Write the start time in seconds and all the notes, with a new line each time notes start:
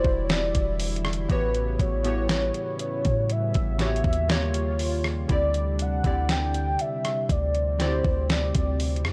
Already playing: D3 E3 G3 D4 E4 F#4 G4 C5 D5
0.04 E1, kick
0.24 C#5
0.30 D5, snare, closed hi-hat
0.55 E1, kick, closed hi-hat
0.80 closed hi-hat, open hi-hat
0.96 closed hi-hat
1.05 cross-stick
1.13 closed hi-hat
1.28 A1 A2 C#3 E3 G3 B3 F#4 G4 B4 C#5, kick, closed hi-hat
1.55 closed hi-hat
1.79 A1 C#5, kick, closed hi-hat
2.03 A2 E3 B3 F#4 G4 C#5, closed hi-hat
2.29 snare, closed hi-hat
2.54 closed hi-hat
2.79 closed hi-hat
3.05 A2, kick, closed hi-hat
3.30 E5, closed hi-hat
3.54 A1, kick, closed hi-hat
3.78 A2 E3 B3 F#4 G4 C#5, snare, closed hi-hat
3.96 closed hi-hat
4.04 D#2 E5, kick
4.13 closed hi-hat
4.28 D#3 A#3 F4 G4 C#5, snare, closed hi-hat
4.54 closed hi-hat
4.79 open hi-hat
5.04 cross-stick
5.28 D2 C3 D3 C4 D4 E4 G4 D5, kick, closed hi-hat
5.54 closed hi-hat
5.79 F#5, closed hi-hat
6.03 D2 D3 C4 E4 G4 D5, kick, closed hi-hat
6.29 G5, snare, closed hi-hat
6.54 closed hi-hat
6.79 E5, closed hi-hat
7.05 cross-stick, closed hi-hat
7.29 D2 C4 D5, kick, closed hi-hat
7.55 closed hi-hat
7.78 D3 C4 E4 F#4 C5 D5, snare, closed hi-hat
7.88 G4
8.04 D2, kick
8.30 D5, snare, closed hi-hat
8.55 D2, kick, closed hi-hat
8.80 closed hi-hat, open hi-hat
8.96 closed hi-hat
9.05 F#2, cross-stick